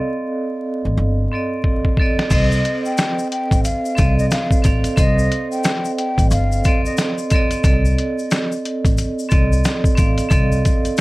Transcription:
0.00 1.32 C4 medium
0.00 1.33 A4 medium
0.00 1.34 D5 medium
0.00 1.35 D#5 medium
0.00 2.32 F5 medium
0.85 0.96 A1 medium
0.97 1.26 G1 loud
1.32 1.93 C4 medium
1.32 1.94 A4 medium
1.32 1.94 D5 medium
1.32 1.95 D#5 medium
1.64 kick medium
1.85 kick medium
1.97 2.29 C4 medium
1.97 2.29 A4 medium
1.97 2.30 D5 medium
1.97 kick medium
2.02 2.31 D#5 medium
2.19 snare medium
2.30 2.59 C2 loud
2.30 3.54 C4 medium
2.30 3.55 A4 medium
2.30 3.56 C5 medium
2.30 2.82 D#5 loud
2.30 3.56 D#5 medium
2.30 kick loud
2.30 closed hi-hat loud
2.30 crash loud
2.30 shaker medium
2.52 shaker medium
2.65 closed hi-hat medium
2.85 3.28 G5 medium
2.85 shaker soft
2.97 snare loud
2.97 closed hi-hat medium
2.97 shaker medium
3.19 shaker soft
3.31 3.61 G5 medium
3.31 closed hi-hat medium
3.51 3.62 A1 medium
3.51 kick medium
3.51 closed hi-hat medium
3.51 shaker soft
3.64 4.15 F5 medium
3.64 closed hi-hat medium
3.64 shaker medium
3.86 shaker medium
3.95 4.27 C2 loud
3.95 4.58 C4 medium
3.95 4.59 A4 medium
3.95 4.60 D5 medium
3.95 4.60 D#5 medium
3.95 kick loud
3.95 closed hi-hat medium
3.95 shaker medium
4.19 4.30 D#5 medium
4.19 shaker medium
4.30 4.60 F5 medium
4.30 snare loud
4.30 closed hi-hat loud
4.30 shaker medium
4.51 kick loud
4.51 shaker medium
4.62 4.82 A1 loud
4.62 4.94 C4 medium
4.62 4.95 A4 medium
4.62 4.95 D5 medium
4.62 4.96 F5 medium
4.62 kick loud
4.62 closed hi-hat medium
4.62 shaker medium
4.84 closed hi-hat medium
4.84 shaker medium
4.96 5.26 C2 loud
4.96 6.21 C4 medium
4.96 6.21 A4 medium
4.96 6.22 C5 medium
4.96 5.48 D#5 loud
4.96 6.22 D#5 medium
4.96 kick loud
4.96 closed hi-hat loud
4.96 shaker medium
5.19 shaker medium
5.32 closed hi-hat medium
5.52 5.95 G5 medium
5.52 shaker soft
5.64 snare loud
5.64 closed hi-hat medium
5.64 shaker medium
5.85 shaker medium
5.97 6.27 G5 medium
5.97 closed hi-hat medium
6.18 6.29 A1 medium
6.18 kick medium
6.18 closed hi-hat medium
6.18 shaker soft
6.31 6.59 G1 loud
6.31 6.82 F5 medium
6.31 closed hi-hat medium
6.31 shaker medium
6.52 shaker medium
6.64 7.27 C4 medium
6.64 7.27 A4 medium
6.64 7.28 D5 medium
6.64 kick loud
6.64 closed hi-hat medium
6.64 shaker medium
6.69 7.28 D#5 medium
6.86 6.96 D#5 medium
6.86 shaker medium
6.97 snare loud
6.97 closed hi-hat loud
6.97 shaker medium
7.18 shaker medium
7.30 7.62 C4 medium
7.30 7.63 A4 medium
7.30 kick loud
7.30 closed hi-hat medium
7.30 shaker medium
7.34 7.64 D5 medium
7.34 7.64 D#5 loud
7.51 closed hi-hat medium
7.51 shaker medium
7.64 7.93 C2 loud
7.64 8.88 C4 medium
7.64 8.88 A4 medium
7.64 8.89 D5 medium
7.64 8.90 D#5 medium
7.64 kick loud
7.64 closed hi-hat loud
7.64 shaker medium
7.85 shaker medium
7.98 closed hi-hat medium
8.19 shaker soft
8.31 snare loud
8.31 closed hi-hat medium
8.31 shaker medium
8.52 shaker soft
8.65 closed hi-hat medium
8.85 8.95 A1 loud
8.85 kick medium
8.85 closed hi-hat medium
8.85 shaker soft
8.98 closed hi-hat medium
8.98 shaker medium
9.19 shaker medium
9.29 9.60 C2 loud
9.29 9.92 C4 medium
9.29 9.92 A4 medium
9.29 9.93 D5 medium
9.29 9.93 D#5 medium
9.29 kick loud
9.29 closed hi-hat medium
9.29 shaker medium
9.53 shaker medium
9.64 snare loud
9.64 closed hi-hat loud
9.64 shaker medium
9.84 kick loud
9.84 shaker medium
9.95 10.16 A1 medium
9.95 10.27 C4 medium
9.95 10.28 A4 medium
9.95 10.28 D5 medium
9.95 10.29 F5 medium
9.95 kick loud
9.95 closed hi-hat medium
9.95 shaker medium
10.18 closed hi-hat medium
10.18 shaker medium
10.29 10.59 C2 loud
10.29 11.01 C4 medium
10.29 11.01 A4 medium
10.29 11.01 D5 medium
10.29 11.01 D#5 medium
10.29 kick loud
10.29 closed hi-hat medium
10.29 shaker medium
10.52 shaker medium
10.65 kick loud
10.65 closed hi-hat medium
10.65 shaker medium
10.85 closed hi-hat medium
10.85 shaker soft
10.97 closed hi-hat medium
10.97 shaker medium

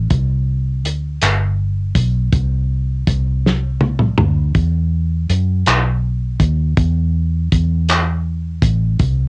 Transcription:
0.10 0.85 C2 medium
0.10 kick loud
0.10 closed hi-hat medium
0.85 1.18 D2 medium
0.85 closed hi-hat medium
1.22 1.92 G1 medium
1.22 clap loud
1.22 closed hi-hat medium
1.95 2.29 B1 medium
1.95 kick medium
1.95 closed hi-hat medium
2.32 3.03 C2 loud
2.32 kick loud
2.32 closed hi-hat medium
3.07 4.15 C2 medium
3.07 kick loud
3.07 closed hi-hat medium
3.46 snare medium
3.81 high tom medium
3.99 mid tom medium
4.18 4.52 D2 medium
4.18 mid tom loud
4.55 5.25 E2 loud
4.55 kick loud
4.55 closed hi-hat medium
5.30 5.63 F#2 medium
5.30 closed hi-hat medium
5.66 6.36 B1 medium
5.66 clap loud
5.66 closed hi-hat medium
6.40 6.74 D#2 medium
6.40 kick medium
6.40 closed hi-hat medium
6.77 7.48 E2 loud
6.77 kick loud
6.77 closed hi-hat medium
7.52 8.59 E2 medium
7.52 kick loud
7.52 closed hi-hat medium
7.88 clap loud
7.88 closed hi-hat medium
8.62 8.96 A1 medium
8.62 kick loud
8.62 closed hi-hat medium
8.99 9.28 C2 loud
8.99 kick loud
8.99 closed hi-hat medium

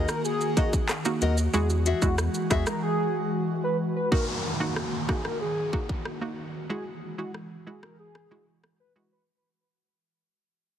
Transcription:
0.00 1.51 D#3 medium
0.00 0.13 A#3 medium
0.00 1.51 A#3 medium
0.00 0.13 D#4 medium
0.00 0.13 F#4 medium
0.00 1.51 F#4 loud
0.08 0.22 A#4 medium
0.08 cross-stick loud
0.08 shaker medium
0.25 0.70 G#4 loud
0.25 shaker medium
0.41 shaker soft
0.57 0.77 A#3 medium
0.57 0.78 D#4 medium
0.57 0.71 F#4 medium
0.57 0.78 F#4 medium
0.57 0.71 A#4 medium
0.57 0.72 D#5 loud
0.57 kick loud
0.57 closed hi-hat medium
0.57 high bongo medium
0.57 shaker soft
0.73 kick medium
0.73 high bongo medium
0.73 shaker medium
0.89 cross-stick loud
0.89 clap loud
0.89 shaker medium
1.05 1.26 A#3 medium
1.05 1.26 D#4 medium
1.05 1.26 F#4 medium
1.05 high bongo medium
1.05 shaker medium
1.21 1.48 D#2 loud
1.21 1.35 F#4 loud
1.21 1.36 A#4 loud
1.21 1.36 D#5 loud
1.21 closed hi-hat medium
1.21 high bongo medium
1.21 low bongo medium
1.21 shaker medium
1.38 shaker medium
1.54 1.93 E2 loud
1.54 4.09 E3 medium
1.54 1.74 G#3 loud
1.54 4.09 G#3 medium
1.54 1.74 E4 medium
1.54 4.09 F#4 medium
1.54 1.75 F#4 loud
1.54 1.67 G#4 loud
1.54 shaker medium
1.70 high bongo medium
1.70 shaker medium
1.86 2.00 F#4 medium
1.86 2.00 G#4 medium
1.86 2.01 E5 medium
1.86 closed hi-hat medium
1.86 shaker medium
2.02 2.28 E2 medium
2.02 2.23 G#3 medium
2.02 2.23 E4 medium
2.02 2.16 F#4 medium
2.02 2.23 F#4 medium
2.02 kick loud
2.02 shaker medium
2.18 cross-stick medium
2.18 shaker medium
2.34 shaker medium
2.50 2.64 E2 loud
2.50 2.71 G#3 medium
2.50 2.71 E4 medium
2.50 2.64 F#4 medium
2.50 2.71 F#4 medium
2.50 2.64 G#4 medium
2.50 2.65 G#4 loud
2.50 2.65 E5 loud
2.50 kick loud
2.50 cross-stick loud
2.50 closed hi-hat medium
2.50 low bongo medium
2.50 shaker medium
2.67 2.80 A#4 medium
2.67 cross-stick loud
2.67 shaker medium
2.83 3.28 G#4 loud
3.64 3.77 B4 medium
3.96 4.09 B4 medium
4.12 6.67 D#3 medium
4.12 4.32 A#3 medium
4.12 6.67 A#3 medium
4.12 4.32 D#4 medium
4.12 9.24 F#4 medium
4.12 4.33 F#4 loud
4.12 4.25 A#4 loud
4.12 kick loud
4.12 downlifter medium
4.60 4.81 A#3 medium
4.60 4.81 D#4 medium
4.60 4.74 F#4 medium
4.60 4.81 F#4 medium
4.76 cross-stick medium
5.08 5.29 A#3 medium
5.08 5.29 D#4 medium
5.08 5.29 F#4 medium
5.08 5.22 G#4 medium
5.08 kick loud
5.08 cross-stick medium
5.25 5.38 A#4 medium
5.25 cross-stick medium
5.41 5.86 G#4 loud
5.73 5.94 A#3 medium
5.73 5.94 D#4 medium
5.73 5.94 F#4 medium
5.73 kick medium
5.89 kick medium
6.05 cross-stick medium
6.21 6.42 A#3 medium
6.21 6.42 D#4 medium
6.21 6.42 F#4 medium
6.70 9.25 E3 medium
6.70 6.90 G#3 medium
6.70 9.25 G#3 medium
6.70 6.91 E4 medium
6.70 6.91 F#4 loud
6.70 6.83 G#4 loud
7.18 7.39 G#3 medium
7.18 7.39 E4 medium
7.18 7.32 F#4 medium
7.18 7.39 F#4 medium
7.34 cross-stick medium
7.67 7.87 G#3 medium
7.67 7.87 E4 medium
7.67 7.88 F#4 medium
7.67 7.80 G#4 medium
7.83 7.96 A#4 medium
7.83 cross-stick medium
7.99 8.45 G#4 loud
8.15 cross-stick loud
8.31 8.52 G#3 medium
8.31 8.52 E4 medium
8.31 8.52 F#4 medium
8.64 cross-stick medium
8.80 8.93 B4 medium
8.96 9.16 G#3 medium
8.96 9.16 E4 medium
8.96 9.17 F#4 medium
9.12 9.25 B4 medium

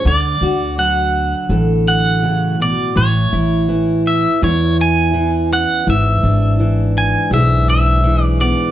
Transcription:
0.05 0.35 D2 medium
0.05 2.22 D3 medium
0.05 0.74 D5 medium
0.41 1.32 D2 medium
0.41 2.92 F#4 soft
0.78 2.92 F#3 medium
0.78 1.87 F#5 medium
1.49 2.72 A1 medium
1.49 2.92 A2 medium
1.49 2.92 A4 medium
1.88 2.62 F#5 medium
2.23 2.59 C#3 medium
2.60 2.95 B2 soft
2.60 2.97 D5 medium
2.96 3.26 A1 medium
2.96 4.41 A2 medium
2.96 4.02 C#5 medium
3.32 4.24 A1 medium
3.32 4.42 E4 medium
3.69 5.12 E3 medium
4.07 4.43 E5 medium
4.41 5.87 E2 medium
4.41 5.64 E2 medium
4.41 5.83 E4 medium
4.41 4.77 C#5 medium
4.81 5.53 G#5 medium
5.14 6.59 E3 medium
5.52 5.83 C#4 soft
5.52 5.89 F#5 medium
5.87 6.17 G#1 medium
5.87 7.31 G#2 medium
5.87 6.97 E5 medium
6.23 7.14 G#1 medium
6.23 8.71 D4 medium
6.60 8.02 E3 medium
6.98 7.30 G#5 medium
7.31 8.52 B1 medium
7.31 8.71 G#2 medium
7.31 8.71 G#4 medium
7.31 7.69 E5 medium
7.70 8.24 E5 loud
8.04 8.71 E3 medium
8.24 8.41 D5 loud
8.41 8.71 B3 soft
8.41 8.71 D5 medium

